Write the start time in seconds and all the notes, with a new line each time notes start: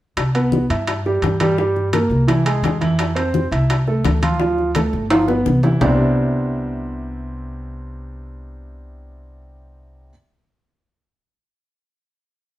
0.17 C2, high bongo, high conga, high timbale
0.35 B3 B4, high bongo, high conga, high timbale
0.52 high bongo, high conga
0.70 G2 E4 E5, high conga, high timbale
0.87 high bongo, high conga, high timbale
1.06 G3 G4, high bongo, high conga
1.22 G2, high bongo, low bongo, high conga, high timbale
1.40 G3 G4, high bongo, high conga, high timbale
1.58 G3 G4, high bongo, high conga
1.76 high bongo, high conga
1.93 A#3 A#4, high bongo, high conga, high timbale
2.10 C2, high bongo, high conga
2.27 E3 E4, high bongo, high conga, high timbale
2.45 G#3 G#4, high conga, high timbale
2.62 F2, high bongo, low bongo, high conga, high timbale
2.81 E3 E4, high bongo, high conga, high timbale
2.99 high bongo, high timbale
3.15 C4 C5, high bongo, high conga, high timbale
3.34 high bongo, high conga
3.51 C2 E4 E5, high conga, high timbale
3.69 high bongo, high conga, high timbale
3.87 A3 A4, high bongo, high conga
4.04 D2, high bongo, low bongo, high conga, high timbale
4.22 F3 F4, high bongo, high conga, high timbale
4.40 F3 F4, high bongo, high conga
4.58 high bongo, high conga
4.75 A3 A4, high bongo, high conga, high timbale
4.93 G1, high bongo, high conga
5.10 F3 F4, high bongo, high conga, high timbale
5.28 B3 B4, high bongo, high conga
5.46 C2, low bongo, high conga
5.63 E3 E4, low bongo, high conga, low timbale
5.81 C2 C3 G3 B3 C4 D4 E4, low bongo, low conga, low timbale